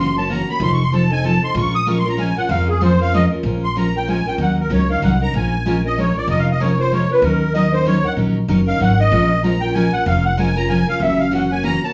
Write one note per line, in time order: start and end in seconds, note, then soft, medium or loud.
0.00 0.42 F#1 loud
0.00 0.16 C6 medium
0.16 0.29 A#3 soft
0.16 0.29 C#4 medium
0.16 0.28 F#4 medium
0.16 0.30 A5 loud
0.29 0.39 C#3 medium
0.29 0.40 E3 medium
0.29 0.40 A#3 medium
0.29 0.40 C#4 loud
0.29 0.40 F#4 loud
0.29 0.48 A#5 medium
0.47 0.60 A#3 soft
0.47 0.60 C#4 soft
0.47 0.60 F#4 medium
0.47 0.61 B5 medium
0.60 1.36 F1 medium
0.60 0.80 F3 medium
0.60 0.80 C4 medium
0.60 0.80 D#4 medium
0.60 0.81 A4 medium
0.60 0.72 C6 loud
0.73 0.82 C#6 loud
0.83 0.92 C6 medium
0.92 1.02 F3 medium
0.92 1.03 C4 loud
0.92 1.03 D#4 loud
0.92 1.03 A4 loud
0.92 1.11 A5 medium
1.10 1.23 C4 soft
1.10 1.23 D#4 medium
1.10 1.23 A4 medium
1.10 1.24 G#5 loud
1.24 1.34 F3 medium
1.24 1.34 C4 medium
1.24 1.35 D#4 medium
1.24 1.35 A4 medium
1.24 1.42 A5 medium
1.42 1.54 C4 soft
1.42 1.55 D#4 soft
1.42 1.54 A4 medium
1.42 1.56 C6 medium
1.54 2.30 A#1 loud
1.54 1.74 F3 medium
1.54 1.74 G#3 medium
1.54 1.74 C#4 medium
1.54 1.75 F4 medium
1.54 1.75 A#4 medium
1.54 1.74 C#6 loud
1.75 1.87 D#6 loud
1.86 1.97 F3 medium
1.86 1.97 G#3 medium
1.86 1.97 C#4 loud
1.86 1.97 F4 loud
1.86 1.97 A#4 loud
1.86 1.98 C#6 medium
1.99 2.08 C6 medium
2.04 2.17 C#4 medium
2.04 2.17 F4 medium
2.04 2.17 A#4 medium
2.09 2.19 A#5 medium
2.17 2.28 F3 medium
2.17 2.28 G#3 medium
2.17 2.28 C#4 loud
2.17 2.29 F4 loud
2.17 2.29 A#4 medium
2.17 2.37 G#5 medium
2.36 2.48 C#4 soft
2.36 2.49 F4 medium
2.36 2.49 A#4 soft
2.36 2.50 F#5 medium
2.48 3.25 F2 medium
2.48 2.68 F3 medium
2.48 2.69 G#3 medium
2.48 2.69 C#4 medium
2.48 2.69 F4 medium
2.48 2.69 A#4 medium
2.48 2.68 F5 medium
2.69 2.81 G#4 medium
2.81 2.91 F3 loud
2.81 2.92 G#3 medium
2.81 2.92 C#4 loud
2.81 2.92 F4 loud
2.81 2.92 A#4 medium
2.81 3.00 C5 medium
3.00 3.13 C#4 medium
3.00 3.13 F4 medium
3.00 3.12 A#4 medium
3.00 3.13 F5 loud
3.13 3.24 F3 medium
3.13 3.24 G#3 loud
3.13 3.24 C#4 loud
3.13 3.24 F4 loud
3.13 3.24 A#4 loud
3.13 3.25 D#5 loud
3.31 3.44 C#4 soft
3.31 3.44 F4 soft
3.31 3.44 A#4 medium
3.43 4.19 A#1 medium
3.43 3.64 F3 medium
3.43 3.64 G#3 medium
3.43 3.64 C#4 medium
3.43 3.64 F4 medium
3.43 3.64 A#4 medium
3.64 3.76 C6 loud
3.75 3.86 F3 medium
3.75 3.86 G#3 medium
3.75 3.87 C#4 medium
3.75 3.87 F4 medium
3.75 3.87 A#4 medium
3.75 3.95 A#5 medium
3.94 4.07 C#4 soft
3.94 4.07 F4 medium
3.94 4.07 A#4 medium
3.94 4.08 G5 medium
4.07 4.18 F3 medium
4.07 4.18 G#3 medium
4.07 4.18 C#4 medium
4.07 4.18 F4 medium
4.07 4.19 A#4 medium
4.07 4.27 G#5 medium
4.25 4.38 C#4 soft
4.25 4.39 F4 soft
4.25 4.38 A#4 soft
4.25 4.40 G5 medium
4.38 4.64 D#2 medium
4.38 4.58 D#3 medium
4.38 4.59 F#3 medium
4.38 4.59 C#4 medium
4.38 4.59 D#4 medium
4.38 4.59 A#4 medium
4.38 4.58 F#5 medium
4.60 4.72 A#4 medium
4.70 4.97 C#2 medium
4.70 4.81 D#3 medium
4.70 4.81 F#3 medium
4.70 4.81 C#4 loud
4.70 4.81 D#4 loud
4.70 4.81 A#4 loud
4.70 4.89 C#5 medium
4.88 5.01 C#4 soft
4.88 5.02 D#4 medium
4.88 5.01 A#4 medium
4.88 5.03 F5 medium
5.02 5.29 C2 medium
5.02 5.13 D#3 medium
5.02 5.13 F#3 medium
5.02 5.13 C#4 medium
5.02 5.13 D#4 loud
5.02 5.13 A#4 medium
5.02 5.21 F#5 medium
5.21 5.33 C#4 soft
5.21 5.34 D#4 soft
5.21 5.33 A#4 medium
5.21 5.34 A#5 loud
5.33 6.09 A#1 medium
5.33 5.53 F3 medium
5.33 5.53 G#3 medium
5.33 5.54 C#4 medium
5.33 5.54 F4 medium
5.33 5.54 A#4 medium
5.33 5.82 G#5 medium
5.66 5.76 F3 medium
5.66 5.76 G#3 medium
5.66 5.76 C#4 loud
5.66 5.76 F4 loud
5.66 5.77 A#4 loud
5.84 5.97 C#4 medium
5.84 5.97 F4 medium
5.84 5.96 A#4 medium
5.84 5.98 D#5 medium
5.98 6.08 F3 medium
5.98 6.08 G#3 medium
5.98 6.08 C#4 medium
5.98 6.08 F4 medium
5.98 6.08 A#4 medium
5.98 6.16 C#5 medium
6.15 6.28 C#4 soft
6.15 6.28 F4 soft
6.15 6.28 A#4 medium
6.15 6.29 D5 medium
6.28 7.03 F1 medium
6.28 6.48 F3 medium
6.28 6.48 G#3 medium
6.28 6.48 C#4 medium
6.28 6.48 F4 medium
6.28 6.48 A#4 medium
6.28 6.39 D#5 medium
6.39 6.49 F5 medium
6.51 6.61 D#5 medium
6.60 6.70 F3 medium
6.60 6.70 G#3 medium
6.60 6.71 C#4 medium
6.60 6.71 F4 loud
6.60 6.71 A#4 loud
6.60 6.78 C#5 medium
6.78 6.91 C#4 soft
6.78 6.91 F4 medium
6.78 6.91 A#4 medium
6.78 6.92 C5 medium
6.92 7.02 F3 medium
6.92 7.02 G#3 medium
6.92 7.02 C#4 medium
6.92 7.02 F4 medium
6.92 7.03 A#4 medium
6.92 7.10 C#5 medium
7.09 7.22 C#4 soft
7.09 7.23 F4 soft
7.09 7.22 A#4 medium
7.09 7.24 B4 medium
7.22 7.98 D#2 medium
7.22 7.42 D#3 medium
7.22 7.43 F#3 medium
7.22 7.43 C#4 medium
7.22 7.43 D#4 medium
7.22 7.53 A#4 medium
7.22 7.43 A#4 medium
7.54 7.65 D#3 medium
7.54 7.65 F#3 medium
7.54 7.65 C#4 loud
7.54 7.65 D#4 medium
7.54 7.65 A#4 loud
7.54 7.72 D#5 medium
7.71 7.84 C#4 soft
7.71 7.85 D#4 medium
7.71 7.85 A#4 medium
7.71 7.86 C5 medium
7.85 7.96 D#3 medium
7.85 7.96 F#3 medium
7.85 7.96 C#4 medium
7.85 7.97 D#4 medium
7.85 7.97 A#4 medium
7.85 8.05 C#5 medium
8.02 8.16 C#4 soft
8.02 8.16 D#4 soft
8.02 8.16 A#4 medium
8.02 8.13 F#5 loud
8.17 8.42 A#1 medium
8.17 8.36 D#3 medium
8.17 8.37 F#3 medium
8.17 8.37 C#4 medium
8.17 8.37 D#4 medium
8.17 8.37 A#4 medium
8.48 8.75 F#1 medium
8.48 8.59 D#3 medium
8.48 8.59 F#3 medium
8.48 8.59 C#4 medium
8.48 8.59 D#4 medium
8.48 8.60 A#4 loud
8.66 8.79 C#4 soft
8.66 8.79 D#4 medium
8.66 8.79 A#4 medium
8.66 8.80 F5 loud
8.79 9.07 G#1 medium
8.79 8.90 D#3 medium
8.79 8.90 F#3 loud
8.79 8.91 C#4 medium
8.79 8.91 D#4 medium
8.79 8.91 A#4 medium
8.79 8.99 F#5 medium
8.97 9.11 C#4 soft
8.97 9.11 D#4 soft
8.97 9.11 A#4 soft
8.97 9.41 D#5 loud
9.11 9.87 A#1 loud
9.11 9.31 F3 medium
9.11 9.31 G#3 medium
9.11 9.31 C#4 medium
9.11 9.31 F4 medium
9.11 9.32 A#4 medium
9.43 9.54 F3 medium
9.43 9.54 G#3 medium
9.43 9.54 C#4 medium
9.43 9.54 F4 loud
9.43 9.54 A#4 loud
9.43 9.61 A#5 medium
9.61 9.74 C#4 soft
9.61 9.75 F4 medium
9.61 9.74 A#4 medium
9.61 9.74 G5 loud
9.74 9.85 F3 medium
9.74 9.85 G#3 medium
9.74 9.86 C#4 medium
9.74 9.86 F4 loud
9.74 9.86 A#4 loud
9.74 9.92 G#5 loud
9.92 10.05 C#4 soft
9.92 10.05 F4 soft
9.92 10.05 A#4 medium
9.92 10.06 F#5 loud
10.05 10.82 F1 loud
10.05 10.25 F3 medium
10.05 10.25 G#3 medium
10.05 10.26 C#4 medium
10.05 10.26 F4 medium
10.05 10.26 A#4 medium
10.05 10.24 F5 medium
10.25 10.38 F#5 medium
10.37 10.48 F3 medium
10.37 10.48 G#3 loud
10.37 10.48 C#4 medium
10.37 10.49 F4 loud
10.37 10.49 A#4 loud
10.37 10.56 G#5 medium
10.55 10.68 C#4 soft
10.55 10.68 F4 medium
10.55 10.68 A#4 medium
10.55 10.69 A#5 loud
10.68 10.79 F3 medium
10.68 10.79 G#3 medium
10.68 10.79 C#4 medium
10.68 10.80 F4 medium
10.68 10.80 A#4 medium
10.68 10.87 G#5 medium
10.86 11.00 C#4 soft
10.86 11.00 F4 soft
10.86 11.00 A#4 soft
10.86 11.01 F5 loud
11.00 11.76 F#1 medium
11.00 11.20 C#3 medium
11.00 11.20 E3 medium
11.00 11.21 A#3 medium
11.00 11.20 C#4 medium
11.00 11.21 F#4 medium
11.00 11.19 E5 medium
11.19 11.32 F5 loud
11.31 11.42 C#3 medium
11.31 11.42 E3 medium
11.31 11.42 A#3 medium
11.31 11.43 C#4 loud
11.31 11.43 F#4 loud
11.31 11.51 F#5 medium
11.49 11.62 A#3 soft
11.49 11.63 C#4 medium
11.49 11.62 F#4 medium
11.49 11.64 G#5 loud
11.63 11.74 C#3 medium
11.63 11.74 E3 medium
11.63 11.74 A#3 loud
11.63 11.74 C#4 loud
11.63 11.74 F#4 medium
11.63 11.82 A#5 loud
11.81 11.93 A#3 soft
11.81 11.93 C#4 medium
11.81 11.93 F#4 medium
11.81 11.93 A5 loud